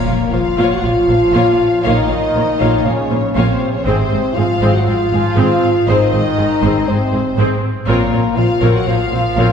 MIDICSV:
0, 0, Header, 1, 9, 480
1, 0, Start_track
1, 0, Key_signature, -5, "minor"
1, 0, Tempo, 502092
1, 1761, Time_signature, 4, 2, 24, 8
1, 9104, End_track
2, 0, Start_track
2, 0, Title_t, "Violin section"
2, 0, Program_c, 0, 48
2, 0, Note_on_c, 0, 70, 61
2, 306, Note_off_c, 0, 70, 0
2, 319, Note_on_c, 0, 77, 68
2, 677, Note_off_c, 0, 77, 0
2, 681, Note_on_c, 0, 78, 66
2, 796, Note_off_c, 0, 78, 0
2, 797, Note_on_c, 0, 77, 76
2, 1763, Note_off_c, 0, 77, 0
2, 1767, Note_on_c, 0, 75, 71
2, 2723, Note_on_c, 0, 73, 66
2, 2727, Note_off_c, 0, 75, 0
2, 3201, Note_on_c, 0, 72, 64
2, 3205, Note_off_c, 0, 73, 0
2, 3557, Note_off_c, 0, 72, 0
2, 3567, Note_on_c, 0, 73, 61
2, 3681, Note_on_c, 0, 72, 77
2, 3684, Note_off_c, 0, 73, 0
2, 4164, Note_off_c, 0, 72, 0
2, 4167, Note_on_c, 0, 77, 83
2, 4527, Note_off_c, 0, 77, 0
2, 4539, Note_on_c, 0, 78, 69
2, 4651, Note_on_c, 0, 77, 80
2, 4653, Note_off_c, 0, 78, 0
2, 5592, Note_off_c, 0, 77, 0
2, 5611, Note_on_c, 0, 75, 83
2, 6566, Note_off_c, 0, 75, 0
2, 6568, Note_on_c, 0, 72, 72
2, 7043, Note_off_c, 0, 72, 0
2, 7522, Note_on_c, 0, 70, 66
2, 7964, Note_off_c, 0, 70, 0
2, 7997, Note_on_c, 0, 77, 68
2, 8350, Note_on_c, 0, 78, 76
2, 8353, Note_off_c, 0, 77, 0
2, 8468, Note_off_c, 0, 78, 0
2, 8477, Note_on_c, 0, 77, 82
2, 9104, Note_off_c, 0, 77, 0
2, 9104, End_track
3, 0, Start_track
3, 0, Title_t, "Violin section"
3, 0, Program_c, 1, 48
3, 66, Note_on_c, 1, 77, 42
3, 71, Note_on_c, 1, 73, 48
3, 143, Note_off_c, 1, 77, 0
3, 148, Note_off_c, 1, 73, 0
3, 306, Note_on_c, 1, 72, 52
3, 306, Note_on_c, 1, 73, 46
3, 382, Note_off_c, 1, 73, 0
3, 383, Note_off_c, 1, 72, 0
3, 559, Note_on_c, 1, 77, 66
3, 562, Note_on_c, 1, 73, 70
3, 781, Note_off_c, 1, 77, 0
3, 782, Note_off_c, 1, 73, 0
3, 801, Note_on_c, 1, 73, 55
3, 802, Note_on_c, 1, 77, 51
3, 878, Note_off_c, 1, 73, 0
3, 879, Note_off_c, 1, 77, 0
3, 1040, Note_on_c, 1, 73, 40
3, 1043, Note_on_c, 1, 72, 51
3, 1116, Note_off_c, 1, 73, 0
3, 1119, Note_off_c, 1, 72, 0
3, 1273, Note_on_c, 1, 73, 61
3, 1275, Note_on_c, 1, 77, 61
3, 1500, Note_off_c, 1, 73, 0
3, 1501, Note_off_c, 1, 77, 0
3, 1762, Note_on_c, 1, 77, 77
3, 1763, Note_on_c, 1, 73, 66
3, 1982, Note_off_c, 1, 73, 0
3, 1986, Note_off_c, 1, 77, 0
3, 1994, Note_on_c, 1, 73, 44
3, 1999, Note_on_c, 1, 77, 41
3, 2070, Note_off_c, 1, 73, 0
3, 2075, Note_off_c, 1, 77, 0
3, 2244, Note_on_c, 1, 73, 49
3, 2247, Note_on_c, 1, 72, 46
3, 2321, Note_off_c, 1, 73, 0
3, 2323, Note_off_c, 1, 72, 0
3, 2474, Note_on_c, 1, 77, 65
3, 2480, Note_on_c, 1, 73, 61
3, 2703, Note_off_c, 1, 77, 0
3, 2705, Note_off_c, 1, 73, 0
3, 2723, Note_on_c, 1, 73, 49
3, 2727, Note_on_c, 1, 77, 55
3, 2800, Note_off_c, 1, 73, 0
3, 2804, Note_off_c, 1, 77, 0
3, 2956, Note_on_c, 1, 73, 45
3, 2963, Note_on_c, 1, 72, 48
3, 3033, Note_off_c, 1, 73, 0
3, 3040, Note_off_c, 1, 72, 0
3, 3209, Note_on_c, 1, 77, 67
3, 3210, Note_on_c, 1, 73, 64
3, 3431, Note_off_c, 1, 77, 0
3, 3432, Note_off_c, 1, 73, 0
3, 3697, Note_on_c, 1, 72, 77
3, 3698, Note_off_c, 1, 72, 0
3, 3698, Note_on_c, 1, 72, 71
3, 3916, Note_off_c, 1, 72, 0
3, 3931, Note_on_c, 1, 72, 45
3, 3932, Note_off_c, 1, 72, 0
3, 3932, Note_on_c, 1, 72, 42
3, 4009, Note_off_c, 1, 72, 0
3, 4177, Note_on_c, 1, 68, 47
3, 4182, Note_off_c, 1, 68, 0
3, 4182, Note_on_c, 1, 68, 44
3, 4258, Note_off_c, 1, 68, 0
3, 4414, Note_on_c, 1, 72, 72
3, 4418, Note_off_c, 1, 72, 0
3, 4418, Note_on_c, 1, 72, 74
3, 4636, Note_off_c, 1, 72, 0
3, 4655, Note_on_c, 1, 72, 52
3, 4658, Note_off_c, 1, 72, 0
3, 4658, Note_on_c, 1, 72, 61
3, 4735, Note_off_c, 1, 72, 0
3, 4903, Note_on_c, 1, 68, 44
3, 4980, Note_off_c, 1, 68, 0
3, 5143, Note_on_c, 1, 72, 65
3, 5360, Note_off_c, 1, 72, 0
3, 5614, Note_on_c, 1, 72, 73
3, 5616, Note_off_c, 1, 72, 0
3, 5616, Note_on_c, 1, 72, 86
3, 5835, Note_off_c, 1, 72, 0
3, 5855, Note_on_c, 1, 72, 47
3, 5856, Note_off_c, 1, 72, 0
3, 5856, Note_on_c, 1, 72, 57
3, 5933, Note_off_c, 1, 72, 0
3, 6092, Note_on_c, 1, 68, 52
3, 6096, Note_off_c, 1, 68, 0
3, 6096, Note_on_c, 1, 68, 51
3, 6173, Note_off_c, 1, 68, 0
3, 6322, Note_on_c, 1, 72, 71
3, 6326, Note_off_c, 1, 72, 0
3, 6326, Note_on_c, 1, 72, 76
3, 6548, Note_off_c, 1, 72, 0
3, 6570, Note_on_c, 1, 72, 67
3, 6576, Note_off_c, 1, 72, 0
3, 6576, Note_on_c, 1, 72, 63
3, 6653, Note_off_c, 1, 72, 0
3, 6806, Note_on_c, 1, 68, 47
3, 6809, Note_off_c, 1, 68, 0
3, 6809, Note_on_c, 1, 68, 56
3, 6886, Note_off_c, 1, 68, 0
3, 7043, Note_on_c, 1, 72, 71
3, 7044, Note_off_c, 1, 72, 0
3, 7044, Note_on_c, 1, 72, 65
3, 7264, Note_off_c, 1, 72, 0
3, 7521, Note_on_c, 1, 73, 68
3, 7524, Note_on_c, 1, 70, 67
3, 7742, Note_off_c, 1, 73, 0
3, 7743, Note_off_c, 1, 70, 0
3, 7761, Note_on_c, 1, 73, 47
3, 7762, Note_on_c, 1, 70, 48
3, 7838, Note_off_c, 1, 70, 0
3, 7838, Note_off_c, 1, 73, 0
3, 7997, Note_on_c, 1, 72, 53
3, 7998, Note_on_c, 1, 65, 57
3, 8073, Note_off_c, 1, 72, 0
3, 8074, Note_off_c, 1, 65, 0
3, 8234, Note_on_c, 1, 70, 71
3, 8235, Note_on_c, 1, 73, 72
3, 8455, Note_off_c, 1, 70, 0
3, 8456, Note_off_c, 1, 73, 0
3, 8486, Note_on_c, 1, 73, 50
3, 8487, Note_on_c, 1, 70, 63
3, 8562, Note_off_c, 1, 73, 0
3, 8564, Note_off_c, 1, 70, 0
3, 8722, Note_on_c, 1, 65, 45
3, 8726, Note_on_c, 1, 72, 45
3, 8799, Note_off_c, 1, 65, 0
3, 8803, Note_off_c, 1, 72, 0
3, 8953, Note_on_c, 1, 70, 61
3, 8959, Note_on_c, 1, 73, 64
3, 9104, Note_off_c, 1, 70, 0
3, 9104, Note_off_c, 1, 73, 0
3, 9104, End_track
4, 0, Start_track
4, 0, Title_t, "French horn section"
4, 0, Program_c, 2, 60
4, 0, Note_on_c, 2, 58, 77
4, 308, Note_off_c, 2, 58, 0
4, 310, Note_on_c, 2, 65, 80
4, 673, Note_off_c, 2, 65, 0
4, 680, Note_on_c, 2, 66, 78
4, 772, Note_on_c, 2, 65, 96
4, 798, Note_off_c, 2, 66, 0
4, 1750, Note_off_c, 2, 65, 0
4, 1759, Note_on_c, 2, 63, 82
4, 2704, Note_off_c, 2, 63, 0
4, 2731, Note_on_c, 2, 61, 83
4, 3205, Note_on_c, 2, 60, 81
4, 3209, Note_off_c, 2, 61, 0
4, 3560, Note_on_c, 2, 61, 71
4, 3566, Note_off_c, 2, 60, 0
4, 3676, Note_on_c, 2, 60, 81
4, 3681, Note_off_c, 2, 61, 0
4, 4152, Note_on_c, 2, 65, 87
4, 4161, Note_off_c, 2, 60, 0
4, 4519, Note_off_c, 2, 65, 0
4, 4524, Note_on_c, 2, 66, 75
4, 4621, Note_on_c, 2, 65, 102
4, 4646, Note_off_c, 2, 66, 0
4, 5596, Note_off_c, 2, 65, 0
4, 5617, Note_on_c, 2, 63, 92
4, 6550, Note_off_c, 2, 63, 0
4, 6580, Note_on_c, 2, 60, 85
4, 7049, Note_off_c, 2, 60, 0
4, 7530, Note_on_c, 2, 58, 78
4, 7968, Note_off_c, 2, 58, 0
4, 8001, Note_on_c, 2, 65, 87
4, 8355, Note_off_c, 2, 65, 0
4, 8362, Note_on_c, 2, 66, 74
4, 8476, Note_off_c, 2, 66, 0
4, 8476, Note_on_c, 2, 65, 94
4, 9104, Note_off_c, 2, 65, 0
4, 9104, End_track
5, 0, Start_track
5, 0, Title_t, "Viola section"
5, 0, Program_c, 3, 48
5, 59, Note_on_c, 3, 58, 40
5, 63, Note_on_c, 3, 65, 52
5, 136, Note_off_c, 3, 58, 0
5, 139, Note_off_c, 3, 65, 0
5, 308, Note_on_c, 3, 65, 51
5, 311, Note_on_c, 3, 58, 50
5, 384, Note_off_c, 3, 65, 0
5, 387, Note_off_c, 3, 58, 0
5, 553, Note_on_c, 3, 65, 68
5, 556, Note_on_c, 3, 58, 60
5, 778, Note_off_c, 3, 65, 0
5, 779, Note_off_c, 3, 58, 0
5, 792, Note_on_c, 3, 58, 50
5, 794, Note_on_c, 3, 65, 46
5, 869, Note_off_c, 3, 58, 0
5, 871, Note_off_c, 3, 65, 0
5, 1035, Note_on_c, 3, 58, 46
5, 1035, Note_on_c, 3, 65, 45
5, 1111, Note_off_c, 3, 65, 0
5, 1112, Note_off_c, 3, 58, 0
5, 1276, Note_on_c, 3, 58, 65
5, 1277, Note_on_c, 3, 65, 67
5, 1502, Note_off_c, 3, 58, 0
5, 1502, Note_off_c, 3, 65, 0
5, 1763, Note_on_c, 3, 58, 69
5, 1763, Note_on_c, 3, 65, 61
5, 1986, Note_off_c, 3, 58, 0
5, 1986, Note_off_c, 3, 65, 0
5, 2007, Note_on_c, 3, 58, 42
5, 2010, Note_on_c, 3, 65, 41
5, 2084, Note_off_c, 3, 58, 0
5, 2086, Note_off_c, 3, 65, 0
5, 2248, Note_on_c, 3, 58, 51
5, 2248, Note_on_c, 3, 65, 48
5, 2324, Note_off_c, 3, 58, 0
5, 2324, Note_off_c, 3, 65, 0
5, 2487, Note_on_c, 3, 65, 58
5, 2488, Note_on_c, 3, 58, 61
5, 2709, Note_off_c, 3, 65, 0
5, 2710, Note_off_c, 3, 58, 0
5, 2731, Note_on_c, 3, 65, 51
5, 2735, Note_on_c, 3, 58, 49
5, 2807, Note_off_c, 3, 65, 0
5, 2811, Note_off_c, 3, 58, 0
5, 2969, Note_on_c, 3, 58, 54
5, 2972, Note_on_c, 3, 65, 46
5, 3046, Note_off_c, 3, 58, 0
5, 3048, Note_off_c, 3, 65, 0
5, 3206, Note_on_c, 3, 58, 72
5, 3208, Note_on_c, 3, 65, 62
5, 3430, Note_off_c, 3, 58, 0
5, 3431, Note_off_c, 3, 65, 0
5, 3684, Note_on_c, 3, 60, 61
5, 3689, Note_on_c, 3, 68, 67
5, 3909, Note_off_c, 3, 60, 0
5, 3911, Note_off_c, 3, 68, 0
5, 3933, Note_on_c, 3, 60, 49
5, 3934, Note_on_c, 3, 68, 51
5, 4010, Note_off_c, 3, 60, 0
5, 4011, Note_off_c, 3, 68, 0
5, 4180, Note_on_c, 3, 60, 51
5, 4180, Note_on_c, 3, 68, 53
5, 4256, Note_off_c, 3, 60, 0
5, 4256, Note_off_c, 3, 68, 0
5, 4412, Note_on_c, 3, 60, 65
5, 4413, Note_on_c, 3, 68, 57
5, 4633, Note_off_c, 3, 60, 0
5, 4634, Note_off_c, 3, 68, 0
5, 4655, Note_on_c, 3, 68, 49
5, 4656, Note_on_c, 3, 60, 56
5, 4732, Note_off_c, 3, 60, 0
5, 4732, Note_off_c, 3, 68, 0
5, 4892, Note_on_c, 3, 60, 49
5, 4896, Note_on_c, 3, 68, 46
5, 4969, Note_off_c, 3, 60, 0
5, 4972, Note_off_c, 3, 68, 0
5, 5126, Note_on_c, 3, 60, 78
5, 5126, Note_on_c, 3, 68, 74
5, 5351, Note_off_c, 3, 60, 0
5, 5351, Note_off_c, 3, 68, 0
5, 5617, Note_on_c, 3, 60, 62
5, 5617, Note_on_c, 3, 68, 65
5, 5836, Note_off_c, 3, 60, 0
5, 5836, Note_off_c, 3, 68, 0
5, 5858, Note_on_c, 3, 60, 47
5, 5859, Note_on_c, 3, 68, 54
5, 5935, Note_off_c, 3, 60, 0
5, 5935, Note_off_c, 3, 68, 0
5, 6097, Note_on_c, 3, 60, 53
5, 6098, Note_on_c, 3, 68, 54
5, 6173, Note_off_c, 3, 60, 0
5, 6174, Note_off_c, 3, 68, 0
5, 6341, Note_on_c, 3, 60, 74
5, 6342, Note_on_c, 3, 68, 67
5, 6556, Note_off_c, 3, 60, 0
5, 6557, Note_off_c, 3, 68, 0
5, 6583, Note_on_c, 3, 60, 56
5, 6583, Note_on_c, 3, 68, 65
5, 6659, Note_off_c, 3, 60, 0
5, 6660, Note_off_c, 3, 68, 0
5, 6819, Note_on_c, 3, 68, 56
5, 6823, Note_on_c, 3, 60, 53
5, 6896, Note_off_c, 3, 68, 0
5, 6899, Note_off_c, 3, 60, 0
5, 7059, Note_on_c, 3, 68, 69
5, 7060, Note_on_c, 3, 60, 77
5, 7272, Note_off_c, 3, 68, 0
5, 7273, Note_off_c, 3, 60, 0
5, 7521, Note_on_c, 3, 60, 71
5, 7522, Note_on_c, 3, 65, 79
5, 7741, Note_off_c, 3, 60, 0
5, 7742, Note_off_c, 3, 65, 0
5, 7765, Note_on_c, 3, 60, 52
5, 7768, Note_on_c, 3, 65, 49
5, 7841, Note_off_c, 3, 60, 0
5, 7844, Note_off_c, 3, 65, 0
5, 8009, Note_on_c, 3, 60, 54
5, 8009, Note_on_c, 3, 65, 54
5, 8085, Note_off_c, 3, 60, 0
5, 8086, Note_off_c, 3, 65, 0
5, 8245, Note_on_c, 3, 60, 57
5, 8247, Note_on_c, 3, 65, 61
5, 8461, Note_off_c, 3, 60, 0
5, 8462, Note_off_c, 3, 65, 0
5, 8487, Note_on_c, 3, 60, 55
5, 8488, Note_on_c, 3, 65, 64
5, 8564, Note_off_c, 3, 60, 0
5, 8565, Note_off_c, 3, 65, 0
5, 8725, Note_on_c, 3, 60, 43
5, 8727, Note_on_c, 3, 65, 52
5, 8802, Note_off_c, 3, 60, 0
5, 8804, Note_off_c, 3, 65, 0
5, 8963, Note_on_c, 3, 65, 67
5, 8966, Note_on_c, 3, 60, 69
5, 9104, Note_off_c, 3, 60, 0
5, 9104, Note_off_c, 3, 65, 0
5, 9104, End_track
6, 0, Start_track
6, 0, Title_t, "Trombone section"
6, 0, Program_c, 4, 61
6, 0, Note_on_c, 4, 46, 69
6, 314, Note_off_c, 4, 46, 0
6, 315, Note_on_c, 4, 53, 76
6, 675, Note_off_c, 4, 53, 0
6, 687, Note_on_c, 4, 54, 66
6, 793, Note_on_c, 4, 53, 76
6, 801, Note_off_c, 4, 54, 0
6, 1741, Note_off_c, 4, 53, 0
6, 1754, Note_on_c, 4, 51, 86
6, 2701, Note_off_c, 4, 51, 0
6, 2723, Note_on_c, 4, 49, 69
6, 3205, Note_off_c, 4, 49, 0
6, 3215, Note_on_c, 4, 48, 61
6, 3571, Note_off_c, 4, 48, 0
6, 3578, Note_on_c, 4, 49, 59
6, 3686, Note_on_c, 4, 48, 75
6, 3692, Note_off_c, 4, 49, 0
6, 4157, Note_off_c, 4, 48, 0
6, 4171, Note_on_c, 4, 53, 73
6, 4529, Note_off_c, 4, 53, 0
6, 4536, Note_on_c, 4, 54, 63
6, 4649, Note_off_c, 4, 54, 0
6, 4655, Note_on_c, 4, 53, 86
6, 5594, Note_off_c, 4, 53, 0
6, 5615, Note_on_c, 4, 51, 91
6, 6549, Note_off_c, 4, 51, 0
6, 6593, Note_on_c, 4, 48, 64
6, 7046, Note_off_c, 4, 48, 0
6, 7515, Note_on_c, 4, 46, 76
6, 7960, Note_off_c, 4, 46, 0
6, 7999, Note_on_c, 4, 53, 75
6, 8348, Note_on_c, 4, 54, 69
6, 8354, Note_off_c, 4, 53, 0
6, 8467, Note_off_c, 4, 54, 0
6, 8470, Note_on_c, 4, 53, 81
6, 9104, Note_off_c, 4, 53, 0
6, 9104, End_track
7, 0, Start_track
7, 0, Title_t, "Cello section"
7, 0, Program_c, 5, 48
7, 72, Note_on_c, 5, 46, 51
7, 149, Note_off_c, 5, 46, 0
7, 317, Note_on_c, 5, 46, 51
7, 394, Note_off_c, 5, 46, 0
7, 557, Note_on_c, 5, 46, 81
7, 634, Note_off_c, 5, 46, 0
7, 799, Note_on_c, 5, 46, 50
7, 875, Note_off_c, 5, 46, 0
7, 1040, Note_on_c, 5, 46, 47
7, 1116, Note_off_c, 5, 46, 0
7, 1293, Note_on_c, 5, 46, 63
7, 1370, Note_off_c, 5, 46, 0
7, 1768, Note_on_c, 5, 46, 63
7, 1845, Note_off_c, 5, 46, 0
7, 2012, Note_on_c, 5, 46, 52
7, 2089, Note_off_c, 5, 46, 0
7, 2256, Note_on_c, 5, 46, 55
7, 2332, Note_off_c, 5, 46, 0
7, 2492, Note_on_c, 5, 46, 75
7, 2569, Note_off_c, 5, 46, 0
7, 2726, Note_on_c, 5, 46, 49
7, 2802, Note_off_c, 5, 46, 0
7, 2972, Note_on_c, 5, 46, 50
7, 3048, Note_off_c, 5, 46, 0
7, 3208, Note_on_c, 5, 46, 70
7, 3285, Note_off_c, 5, 46, 0
7, 3693, Note_on_c, 5, 44, 67
7, 3770, Note_off_c, 5, 44, 0
7, 3938, Note_on_c, 5, 44, 48
7, 4014, Note_off_c, 5, 44, 0
7, 4175, Note_on_c, 5, 44, 50
7, 4251, Note_off_c, 5, 44, 0
7, 4412, Note_on_c, 5, 44, 81
7, 4489, Note_off_c, 5, 44, 0
7, 4648, Note_on_c, 5, 44, 57
7, 4725, Note_off_c, 5, 44, 0
7, 4891, Note_on_c, 5, 44, 55
7, 4968, Note_off_c, 5, 44, 0
7, 5132, Note_on_c, 5, 44, 72
7, 5209, Note_off_c, 5, 44, 0
7, 5622, Note_on_c, 5, 44, 67
7, 5699, Note_off_c, 5, 44, 0
7, 5858, Note_on_c, 5, 44, 51
7, 5935, Note_off_c, 5, 44, 0
7, 6093, Note_on_c, 5, 44, 60
7, 6170, Note_off_c, 5, 44, 0
7, 6335, Note_on_c, 5, 44, 85
7, 6411, Note_off_c, 5, 44, 0
7, 6574, Note_on_c, 5, 44, 55
7, 6651, Note_off_c, 5, 44, 0
7, 6807, Note_on_c, 5, 44, 52
7, 6883, Note_off_c, 5, 44, 0
7, 7049, Note_on_c, 5, 44, 74
7, 7126, Note_off_c, 5, 44, 0
7, 7520, Note_on_c, 5, 46, 68
7, 7596, Note_off_c, 5, 46, 0
7, 7759, Note_on_c, 5, 46, 56
7, 7836, Note_off_c, 5, 46, 0
7, 8004, Note_on_c, 5, 46, 59
7, 8080, Note_off_c, 5, 46, 0
7, 8239, Note_on_c, 5, 46, 83
7, 8316, Note_off_c, 5, 46, 0
7, 8472, Note_on_c, 5, 46, 48
7, 8548, Note_off_c, 5, 46, 0
7, 8709, Note_on_c, 5, 46, 53
7, 8785, Note_off_c, 5, 46, 0
7, 8949, Note_on_c, 5, 46, 73
7, 9026, Note_off_c, 5, 46, 0
7, 9104, End_track
8, 0, Start_track
8, 0, Title_t, "Double bass section"
8, 0, Program_c, 6, 48
8, 67, Note_on_c, 6, 34, 47
8, 144, Note_off_c, 6, 34, 0
8, 308, Note_on_c, 6, 34, 46
8, 385, Note_off_c, 6, 34, 0
8, 548, Note_on_c, 6, 34, 69
8, 625, Note_off_c, 6, 34, 0
8, 788, Note_on_c, 6, 34, 49
8, 865, Note_off_c, 6, 34, 0
8, 1030, Note_on_c, 6, 34, 50
8, 1106, Note_off_c, 6, 34, 0
8, 1275, Note_on_c, 6, 34, 67
8, 1351, Note_off_c, 6, 34, 0
8, 1766, Note_on_c, 6, 34, 73
8, 1842, Note_off_c, 6, 34, 0
8, 2009, Note_on_c, 6, 34, 46
8, 2085, Note_off_c, 6, 34, 0
8, 2247, Note_on_c, 6, 34, 49
8, 2324, Note_off_c, 6, 34, 0
8, 2494, Note_on_c, 6, 34, 75
8, 2570, Note_off_c, 6, 34, 0
8, 2732, Note_on_c, 6, 34, 47
8, 2808, Note_off_c, 6, 34, 0
8, 2973, Note_on_c, 6, 34, 50
8, 3049, Note_off_c, 6, 34, 0
8, 3209, Note_on_c, 6, 34, 74
8, 3286, Note_off_c, 6, 34, 0
8, 3690, Note_on_c, 6, 32, 81
8, 3766, Note_off_c, 6, 32, 0
8, 3932, Note_on_c, 6, 32, 52
8, 4008, Note_off_c, 6, 32, 0
8, 4176, Note_on_c, 6, 32, 51
8, 4253, Note_off_c, 6, 32, 0
8, 4414, Note_on_c, 6, 32, 70
8, 4490, Note_off_c, 6, 32, 0
8, 4655, Note_on_c, 6, 32, 54
8, 4732, Note_off_c, 6, 32, 0
8, 4900, Note_on_c, 6, 32, 50
8, 4977, Note_off_c, 6, 32, 0
8, 5141, Note_on_c, 6, 32, 77
8, 5218, Note_off_c, 6, 32, 0
8, 5620, Note_on_c, 6, 32, 80
8, 5697, Note_off_c, 6, 32, 0
8, 5861, Note_on_c, 6, 32, 49
8, 5938, Note_off_c, 6, 32, 0
8, 6100, Note_on_c, 6, 32, 53
8, 6176, Note_off_c, 6, 32, 0
8, 6339, Note_on_c, 6, 32, 78
8, 6416, Note_off_c, 6, 32, 0
8, 6581, Note_on_c, 6, 32, 54
8, 6658, Note_off_c, 6, 32, 0
8, 6816, Note_on_c, 6, 32, 52
8, 6892, Note_off_c, 6, 32, 0
8, 7046, Note_on_c, 6, 32, 80
8, 7122, Note_off_c, 6, 32, 0
8, 7526, Note_on_c, 6, 34, 83
8, 7602, Note_off_c, 6, 34, 0
8, 7768, Note_on_c, 6, 34, 53
8, 7845, Note_off_c, 6, 34, 0
8, 8003, Note_on_c, 6, 34, 53
8, 8079, Note_off_c, 6, 34, 0
8, 8239, Note_on_c, 6, 34, 78
8, 8316, Note_off_c, 6, 34, 0
8, 8480, Note_on_c, 6, 34, 51
8, 8557, Note_off_c, 6, 34, 0
8, 8719, Note_on_c, 6, 34, 50
8, 8795, Note_off_c, 6, 34, 0
8, 8947, Note_on_c, 6, 34, 74
8, 9024, Note_off_c, 6, 34, 0
8, 9104, End_track
9, 0, Start_track
9, 0, Title_t, "Impact"
9, 0, Program_c, 7, 103
9, 0, Note_on_c, 7, 60, 68
9, 1760, Note_off_c, 7, 60, 0
9, 9104, End_track
0, 0, End_of_file